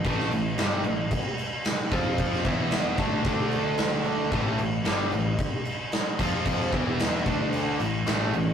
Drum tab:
CC |x-x-x-x-x-x-x-x-|x-x-x-x-x-x-x-x-|x-x-x-x-x-x-x-x-|x-x-x-x-x-x-x-x-|
SD |-o--o-------o---|-o--o-------o---|----o-------o---|-o--o-------o---|
BD |o-------o-----o-|o-o---o-o-------|o-------o-----o-|o-o---o---------|